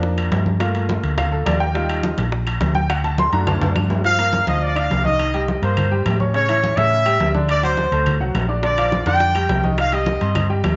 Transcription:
Already playing: F2 F3 A#3 D4
0.03 high bongo, high conga
0.17 high bongo, high conga, high timbale, claves
0.32 G2, high bongo, low bongo, high conga, high timbale, low timbale
0.46 high bongo, high conga
0.60 A3 A#3 F4, high bongo, high conga, high timbale, claves
0.75 high bongo, high conga, high timbale
0.89 high bongo, high conga, low timbale
1.03 D2, high conga, high timbale
1.18 F5, high bongo, high conga, low conga, high timbale, claves
1.32 A4, high bongo, high conga
1.46 D#2 D5, high bongo, low bongo, high conga, high timbale, low timbale, claves
1.60 G5
1.74 G3 D#4 F4, high bongo, high conga, high timbale
1.89 high bongo, high conga, high timbale, claves
2.03 high bongo, high conga, low timbale
2.18 A#1, high conga, high timbale
2.32 high bongo, high conga
2.47 high bongo, high conga, high timbale, claves
2.61 D2, high bongo, low bongo, high conga, high timbale, low timbale
2.75 G5, high bongo, high conga
2.90 F#5, high bongo, high conga, high timbale, claves
3.04 A5, high bongo, high conga, high timbale
3.18 C6, high bongo, high conga, low timbale
3.32 F#2 A3 D4 F#4 A#5, high conga, high timbale
3.47 A5, high bongo, high conga, low conga, high timbale, claves
3.61 F#2, high bongo, high conga, low conga, high timbale
3.75 G2, high bongo, low bongo, high conga, claves
3.90 high conga, low timbale
4.04 F3 F4 F5, high conga, high timbale
4.18 A#3 A#4 A#5, high conga, high timbale, claves
4.33 high conga, low timbale
4.47 D2 F3 F4 D#5 F5, high conga, high timbale
4.62 D5, high conga
4.76 D4 D5 F5 D6, high conga, high timbale, claves
4.90 C2, high conga, high timbale, low timbale
5.04 D#3 D#4 D#5, high conga
5.19 high timbale, claves
5.34 G3 G4 G5, high conga, high timbale
5.48 high conga, low timbale
5.62 G2 A#3 A#4 C5 A#5, high conga, high timbale
5.77 high conga, low conga, high timbale, claves
5.91 G3 G4 G5, high conga
6.05 A2, high conga, high timbale, low timbale, claves
6.20 C#4 C#5 C#6, high conga
6.34 C#3 C#4 C#5, high conga, high timbale
6.48 E3 E4 E5, high conga, high timbale, claves
6.63 high conga, low timbale
6.77 A2 C#3 C#4 C#5 E5, high conga, high timbale
6.92 high conga
7.06 G3 G4 G5, high conga, high timbale, claves
7.20 D2, high conga, high timbale, low timbale
7.34 D3 D4 D5, high conga
7.49 D5, high timbale, claves
7.63 F#3 F#4 C5 F#5, high conga, high timbale
7.77 high conga, low timbale
7.92 D2 A3 A4 A5, high conga, high timbale
8.06 high conga, low conga, high timbale, claves
8.20 C2 F#3 F#4 F#5, high conga
8.35 A#1, high conga, high timbale, low timbale, claves
8.49 D4 D5 D6
8.63 D3 D4 D5, high bongo, high conga, high timbale
8.77 F3 F4 F5, high bongo, high conga, high timbale, claves
8.92 high bongo, high conga, low timbale
9.06 F2 D3 D4 D5 G5, high conga, high timbale
9.20 high bongo, high conga
9.35 G3 G4 G5, high bongo, high conga, high timbale, claves
9.49 C2, high bongo, low bongo, high conga, high timbale, low timbale
9.64 D#3 D#4 D#5, high bongo, high conga
9.78 F5, high bongo, high conga, high timbale, claves
9.92 G3 G4 D#5 G5, high bongo, high conga, high timbale
10.06 high bongo, high conga, low timbale
10.21 G2 C4 C5 C6, high conga, high timbale
10.35 high bongo, high conga, low conga, high timbale, claves
10.49 G3 G4 G5, high bongo, high conga
10.64 D#2, high bongo, low bongo, high conga, high timbale, low timbale, claves

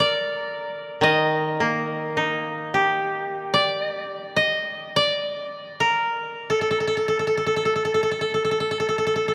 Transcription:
Already playing: A#4
0.00 D5
1.01 D#3 D#5
1.60 A#3
2.17 D#4
2.74 G4
3.54 D5
4.36 D#5
4.96 D5
5.80 A#4
6.50 A4
6.61 A4
6.71 A4
6.80 A4
6.87 A4
6.97 A4
7.08 A4
7.19 A4
7.27 A4
7.37 A4
7.47 A4
7.56 A4
7.65 A4
7.76 A4
7.85 A4
7.94 A4
8.03 A4
8.11 A4
8.21 A4
8.34 A4
8.45 A4
8.51 A4
8.60 A4
8.71 A4
8.80 A4
8.89 A4
8.98 A4
9.07 A4
9.16 A4
9.28 A4

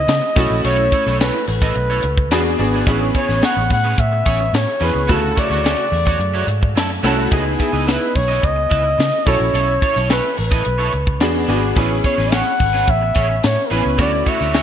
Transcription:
Already playing: G#3 B3 D#4 E4 D#5
0.07 C#3, muted clean electric guitar stroke, snare, closed hi-hat
0.22 muted clean electric guitar stroke
0.36 B1 A3 C#4 E4 F#4 A4 C#5, kick, open hi-hat
0.50 A#1, muted clean electric guitar stroke
0.65 B1 E4 A4 C#5, closed hi-hat
0.78 muted clean electric guitar stroke
0.92 E4 A4 C#5, kick, closed hi-hat
1.06 B1 E4 A4 C#5, snare
1.20 E4 A4 B4 C#5, snare, closed hi-hat
1.33 muted clean electric guitar stroke
1.48 A1 B4, muted clean electric guitar stroke, open hi-hat
1.62 E4 A4 D#5, kick, snare
1.75 B1, muted clean electric guitar stroke, closed hi-hat
1.90 E4 A4 C#5
2.03 C#2, muted clean electric guitar stroke, closed hi-hat
2.18 muted clean electric guitar stroke, kick
2.31 E2 B3 D4 F#4 G#4 B4, snare, closed hi-hat
2.45 muted clean electric guitar stroke
2.59 G#1 B3 D4 F#4 G#4, muted clean electric guitar stroke, open hi-hat
2.73 D4 G#4 B4
2.87 A1 B3 C#4 E4 G#4 B4, kick, closed hi-hat
3.01 muted clean electric guitar stroke
3.15 C#4 G#4 C#5, kick, closed hi-hat
3.28 A1 C#4 G#4 B4, snare
3.42 C#4 G#4 C#5 F#5, snare, closed hi-hat
3.56 A1, muted clean electric guitar stroke
3.70 A2 F#5, muted clean electric guitar stroke, kick, open hi-hat
3.84 C#4 G#4 B4
3.98 A2 E5, kick, closed hi-hat
4.12 muted clean electric guitar stroke
4.26 A1 C#4 G#4 C#5, kick, closed hi-hat
4.40 muted clean electric guitar stroke
4.53 A2 C#5, muted clean electric guitar stroke, snare, closed hi-hat
4.67 muted clean electric guitar stroke
4.80 E2 B3 C#4 E4 G#4 B4, open hi-hat
4.84 B4
4.94 C#2, muted clean electric guitar stroke
5.07 D2 C#3 A3 E4 F#4 C#5 E5, kick, closed hi-hat
5.12 A4
5.22 muted clean electric guitar stroke
5.36 F#4 C#5 D5 E5, kick, closed hi-hat
5.50 D2 F#4 C#5 E5, snare
5.63 F#4 C#5 E5, snare, closed hi-hat
5.77 muted clean electric guitar stroke
5.92 E2, muted clean electric guitar stroke, open hi-hat
6.06 F#4 C#5 F#5, kick, snare
6.19 F#2, muted clean electric guitar stroke, closed hi-hat
6.34 F#4 C#5 E5
6.47 G#2, muted clean electric guitar stroke, closed hi-hat
6.62 muted clean electric guitar stroke, kick
6.75 F#2 F#3 E4 A4, muted clean electric guitar stroke, snare, closed hi-hat
6.89 muted clean electric guitar stroke
7.03 C2 F#3 A3 C#4 E4 F#4 A4 C#5 E5, open hi-hat
7.18 muted clean electric guitar stroke
7.31 C#2 B3 D#4 E4 G#4 B4 D#5, kick, closed hi-hat
7.45 muted clean electric guitar stroke
7.59 E4 G#4 B4 E5, kick, closed hi-hat
7.73 C#2 E4 B4 D#5
7.86 E4 B4 E5, snare, closed hi-hat
8.00 muted clean electric guitar stroke
8.15 B1 C#5, muted clean electric guitar stroke, kick, open hi-hat
8.28 E4 B4 D#5, snare
8.43 C#2 D#5, kick, closed hi-hat
8.56 muted clean electric guitar stroke
8.70 C#2 E4 B4 E5, kick, closed hi-hat
8.84 muted clean electric guitar stroke
8.98 C#3, muted clean electric guitar stroke, snare, closed hi-hat
9.12 muted clean electric guitar stroke
9.26 B1 C#4 E4 F#4 A4 C#5, kick, open hi-hat
9.40 A#1, muted clean electric guitar stroke
9.53 B1 E4 A4 C#5, closed hi-hat
9.68 muted clean electric guitar stroke
9.82 E4 A4 C#5, kick, closed hi-hat
9.96 B1 E4 A4 C#5, snare
10.09 E4 A4 B4 C#5, snare, closed hi-hat
10.24 muted clean electric guitar stroke
10.37 A1 B4, muted clean electric guitar stroke, open hi-hat
10.51 E4 A4 D#5, kick
10.64 B1, muted clean electric guitar stroke, closed hi-hat
10.78 E4 A4 C#5
10.92 C#2, muted clean electric guitar stroke, closed hi-hat
11.07 muted clean electric guitar stroke, kick
11.20 E2 B3 D4 F#4 G#4, muted clean electric guitar stroke, snare, closed hi-hat
11.34 muted clean electric guitar stroke
11.48 G#1 B3 D4 F#4 G#4 B4, open hi-hat
11.62 muted clean electric guitar stroke
11.76 A1 B3 C#4 E4 G#4 B4, kick, closed hi-hat
11.90 muted clean electric guitar stroke
12.04 C#4 G#4 C#5, kick, closed hi-hat
12.18 A1 C#4 G#4 B4, snare
12.32 C#4 G#4 C#5 F#5, snare, closed hi-hat
12.45 muted clean electric guitar stroke
12.60 G#1, muted clean electric guitar stroke, kick, open hi-hat
12.73 C#4 G#4 B4, snare
12.87 A1 E5, kick, closed hi-hat
13.02 muted clean electric guitar stroke
13.15 A1 C#4 G#4 C#5, kick, closed hi-hat
13.29 muted clean electric guitar stroke
13.43 A2 C#5, muted clean electric guitar stroke, snare, closed hi-hat
13.56 muted clean electric guitar stroke
13.67 C#4 G#4 A#4
13.71 A1 B3 C#4 E4 B4, open hi-hat
13.84 C#2, muted clean electric guitar stroke
13.97 D2 A3 C#4 E4 F#4 C#5 D5, kick, closed hi-hat
14.12 muted clean electric guitar stroke
14.26 E4 F#4 C#5 E5, kick, closed hi-hat
14.40 D2 E4 F#4 C#5, snare
14.53 E4 F#4 C#5, snare, closed hi-hat

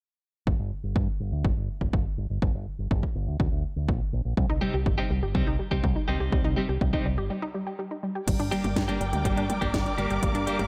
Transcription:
0.47 G1, kick
0.59 G1
0.83 G1
0.96 G2, kick
1.20 G1
1.32 D2
1.44 G1, kick
1.57 G1
1.81 G1, kick
1.93 G1, kick
2.18 G1
2.30 G1
2.42 G1, kick
2.54 G1
2.79 G1
2.91 G1, kick
3.03 kick
3.15 G1
3.27 D2
3.40 D2, kick
3.52 D2
3.76 D2
3.89 A#1, kick
4.13 A#1
4.25 A#1
4.37 C2 G3, kick
4.49 C2 D#4
4.61 C3 G3 C4 D#4 G4
4.74 C2 G4
4.86 G1 G3, kick
4.98 C3 G3 C4 D#4 G4
5.10 C2 G3
5.22 G1 G4
5.35 C2 C3 G3 C4 D#4 G4, kick
5.47 C2 D#4
5.59 G3
5.71 C2 C3 G3 C4 D#4 G4, kick
5.83 C2 G3, kick
5.96 D#4
6.08 C2 C3 G3 C4 D#4 G4
6.20 C2 G4
6.32 C2 G3, kick
6.44 C2 D#4
6.56 C3 G3 C4 D#4 G4
6.69 C2 G4
6.81 C2 G3, kick
6.93 C3 G3 C4 D#4 G4, kick
7.05 C2 G3
7.17 G1 G4
7.30 G3
7.42 D#4
7.54 G3
7.67 G4
7.79 G3
7.91 D#4
8.03 G3
8.15 G4
8.28 G1 G3 A#4 D5 G5 D6, kick, closed hi-hat, crash
8.40 G1 D4, closed hi-hat
8.51 G2 G3 A#3 D4 G4, closed hi-hat
8.64 G1 G4, closed hi-hat, high tom
8.76 G2 G3, kick, snare, closed hi-hat
8.88 G2 G3 A#3 D4 G4, closed hi-hat
9.01 G1 G3, closed hi-hat
9.13 D2 G4, closed hi-hat, high tom
9.24 G1 G2 G3 A#3 D4 G4, kick, closed hi-hat
9.37 G1 D4, closed hi-hat
9.50 G3, closed hi-hat, high tom
9.61 G1 G2 G3 A#3 D4 G4, kick, closed hi-hat
9.74 G1 G3, kick, snare, closed hi-hat, high tom
9.86 D4, closed hi-hat
9.98 G1 G2 G3 A#3 D4 G4, closed hi-hat
10.10 G1 G4, closed hi-hat
10.23 G1 G3 F5, kick, closed hi-hat
10.35 G1 D4, closed hi-hat
10.47 G2 G3 A#3 D4 G4, closed hi-hat
10.59 G1 G4, closed hi-hat, high tom

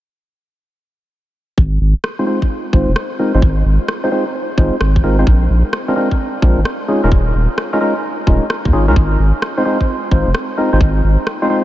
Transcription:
1.58 G#1, kick
1.81 G#1
2.04 cross-stick
2.19 G#3 C4 D#4 F4 C5
2.27 G#3 C4 D#4 F4 C5
2.42 kick
2.73 G#1 G#3 C4 D#4 F4 C5, kick
2.88 F1
2.96 cross-stick
3.19 G#3 C4 D#4 F4 A#4
3.34 G#1 G#3 C4 D#4 F4 C5
3.42 G#1, kick
3.65 G#1
3.88 cross-stick
4.04 G#3 C4 D#4 F4 C5
4.12 G#3 C4 D#4 F4 C5
4.58 G#1 G#3 C4 D#4 F4 C5, kick
4.81 G#1, cross-stick
4.96 kick
5.04 G#1 G#3 C4 D#4 F4 A#4
5.19 G#3 C4 D#4 F4 C5
5.27 A#1, kick
5.50 A#1
5.73 cross-stick
5.88 G#3 C4 D4 F4 A#4
5.96 G#3 C4 D4 F4 A#4
6.11 kick
6.42 A#1 G#3 C4 D4 F4 A#4, kick
6.58 G#1
6.65 cross-stick
6.88 G#3 C#4 D#4 F4 G#4
7.04 D#1 G#3 C#4 D#4 F4 A#4
7.12 D#1, kick
7.35 D#1
7.58 cross-stick
7.73 G#3 C#4 D#4 F4 A#4
7.81 G#3 C#4 D#4 F4 A#4
8.27 D#1 G#3 C#4 D#4 F4 A#4, kick
8.50 cross-stick
8.65 D#2, kick
8.73 G#1 G#3 C#4 D#4 F4 G#4
8.88 C#2 G#3 C#4 D#4 F4 A#4
8.96 G#1, kick
9.19 G#1
9.42 cross-stick
9.57 G#3 C4 D#4 F4 C5
9.65 G#3 C4 D#4 F4 C5
9.81 kick
10.11 G#1 G#3 C4 D#4 F4 C5, kick
10.27 F1
10.35 cross-stick
10.58 G#3 C4 D#4 F4 A#4
10.73 G#1 G#3 C4 D#4 F4 C5
10.81 G#1, kick
11.04 G#1
11.27 cross-stick
11.42 G#3 C4 D#4 F4 C5
11.50 G#3 C4 D#4 F4 C5

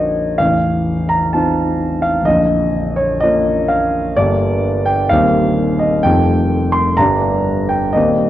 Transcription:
Already playing: A#0 A#1 A#3 D#4 F#4 C5 C#5 D#5
0.38 A0 A1 F5
1.09 A#5
1.33 C4 D#4 F4 A5
2.02 F5
2.22 A#0 D#5
2.27 A#1
2.97 C#5
3.21 A#3 C#4 F4 D#5
3.68 F5
4.16 G1 G2 A#3 D4 G4 D5
4.85 G5
5.09 D#1 D#2 C4 D#4 G4 F5
5.79 D#5
6.03 F1 F2 A3 D#4 G4 G5
6.72 C6
6.97 G1 G2 G3 D4 G4 A#5
7.69 G5
7.93 D#1 D#2 G3 C4 G4 D#5

